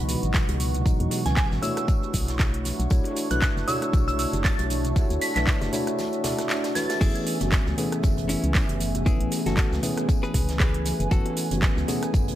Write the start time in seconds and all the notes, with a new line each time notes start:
Already playing: C#2 B2 E3 F#3 G#3 B3 D#4 F#4 B4 D#5 F#5 C#6
0.09 open hi-hat, tambourine, high bongo, shaker
0.23 G#1, closed hi-hat, shaker
0.34 kick, snare, clap, tambourine, shaker
0.49 C#2, closed hi-hat, high bongo
0.59 open hi-hat, tambourine, high conga, shaker
0.74 closed hi-hat, high bongo, low conga, shaker
0.85 B2 E3 F#3 G#3 D#4, kick, tambourine, shaker
1.00 E2, closed hi-hat
1.11 open hi-hat, tambourine, high bongo, shaker
1.25 C#2 B2 E3 F#3 G#3 C#4 G#5, snare, closed hi-hat, high conga, shaker
1.36 G#5, kick, snare, clap, tambourine, high bongo, shaker
1.51 G#1, snare, shaker
1.62 A3 D4 E4 F#4 C#5 E6, open hi-hat, tambourine, low conga, shaker
1.77 cross-stick, closed hi-hat, high bongo, shaker
1.85 C#5, kick, tambourine, high conga
1.89 E5, shaker
2.03 high bongo, shaker
2.13 B1, kick, open hi-hat, tambourine, low conga, shaker
2.28 snare, closed hi-hat, shaker
2.39 kick, snare, clap, tambourine, high bongo, shaker
2.54 closed hi-hat
2.65 snare, open hi-hat, tambourine, high bongo, high conga, shaker
2.80 B1, closed hi-hat, shaker
2.90 B1 A3 D4 E4 F#4 C#5, kick, tambourine, shaker
3.04 closed hi-hat, high bongo
3.16 open hi-hat, tambourine, shaker
3.31 B1 A3 D4 E4 F#4 B4 F#6, closed hi-hat, high bongo, high conga, shaker
3.42 F#6, kick, snare, clap, tambourine, shaker
3.48 A5
3.56 F#1, snare, shaker
3.67 A3 D4 E4 F#4 C#5 E6, open hi-hat, tambourine, high bongo, low conga, shaker
3.82 cross-stick, closed hi-hat, shaker
3.93 B1, kick, tambourine, high bongo, high conga, shaker
4.08 E6, closed hi-hat, low conga, shaker
4.19 E6, open hi-hat, tambourine, shaker
4.33 F#1, closed hi-hat, high bongo, shaker
4.44 A6, kick, snare, clap, tambourine, shaker
4.59 B1, closed hi-hat, high bongo
4.70 F#4, open hi-hat, tambourine, high conga, shaker
4.85 closed hi-hat, low conga, shaker
4.96 A3 D4 E4 F#4 C#5, kick, tambourine, high bongo, shaker
5.10 D2, closed hi-hat, shaker
5.21 B6, open hi-hat, tambourine, high bongo, shaker
5.36 B1 A3 D4 E4 F#4 B4 B6, snare, clap, closed hi-hat, high conga, shaker
5.47 kick, snare, clap, tambourine, shaker
5.61 F#1, snare, closed hi-hat, high bongo, shaker
5.72 A3 D4 E4 F#4 C#5, open hi-hat, tambourine, low conga, shaker
5.87 cross-stick, closed hi-hat, high bongo, shaker
5.99 snare, tambourine, high conga, shaker
6.13 closed hi-hat, shaker
6.24 A3 D4 E4 F#4 D5, snare, open hi-hat, tambourine, high bongo, low conga, shaker
6.38 cross-stick, snare, closed hi-hat, shaker
6.49 snare, clap, tambourine, high bongo, shaker
6.64 snare, closed hi-hat, tambourine
6.75 A3 D4 E4 F#4 B4 A6, snare, open hi-hat, tambourine, high conga, shaker
6.89 snare, closed hi-hat, tambourine, high bongo, shaker
7.01 F#1 E3 A3 B3 C#4 E4 G#4 B4 G#5, kick, crash, tambourine, high bongo, shaker
7.15 closed hi-hat
7.27 open hi-hat, tambourine, shaker
7.40 F#1 E3 A3 B3 C#4 F#4, closed hi-hat, high bongo, high conga, shaker
7.52 kick, snare, clap, tambourine, shaker
7.66 C#2 A3, snare, high bongo, shaker
7.77 E3 A3 B3 C#4 G#4, open hi-hat, tambourine, low conga, shaker
7.92 cross-stick, closed hi-hat, shaker
8.03 F#1, kick, tambourine, high bongo, high conga, shaker
8.17 closed hi-hat, low conga, shaker
8.29 C#4 E4, open hi-hat, tambourine, high bongo, shaker
8.35 G#5
8.44 C#2, closed hi-hat, shaker
8.55 kick, snare, clap, tambourine, shaker
8.69 F#1, closed hi-hat, high bongo
8.80 open hi-hat, tambourine, high conga, shaker
8.95 closed hi-hat, high bongo, low conga, shaker
9.06 E3 A3 B3 C#4 E4 G#4, kick, tambourine, shaker
9.21 A1, closed hi-hat
9.32 open hi-hat, tambourine, high bongo, shaker
9.46 F#1 E3 A3 B3 C#4 F#4 A4, snare, closed hi-hat, high conga, shaker
9.57 kick, snare, clap, tambourine, high bongo, shaker
9.72 C#2, snare, shaker
9.83 E3 A3 B3 C#4 G#4, open hi-hat, tambourine, low conga, shaker
9.97 cross-stick, closed hi-hat, high bongo, shaker
10.08 kick, tambourine, high conga, shaker
10.23 G#4 B4, high bongo, shaker
10.34 C#2, kick, open hi-hat, tambourine, low conga, shaker
10.49 snare, closed hi-hat, shaker
10.60 G#4 B4, kick, snare, clap, tambourine, high bongo, shaker
10.74 closed hi-hat
10.85 snare, open hi-hat, tambourine, high bongo, high conga, shaker
11.00 F#1, closed hi-hat, shaker
11.11 F#1 E3 A3 B3 C#4 F#4 A4, kick, tambourine, shaker
11.25 closed hi-hat, high bongo
11.36 open hi-hat, tambourine, shaker
11.51 F#1 E3 A3 B3 C#4 F#4, closed hi-hat, high bongo, high conga, shaker
11.62 kick, snare, clap, tambourine, shaker
11.77 C#2, snare, shaker
11.88 E3 A3 B3 C#4 G#4, open hi-hat, tambourine, high bongo, low conga, shaker
12.03 cross-stick, closed hi-hat, shaker
12.14 F#1, kick, tambourine, high bongo, high conga, shaker
12.28 closed hi-hat, low conga, shaker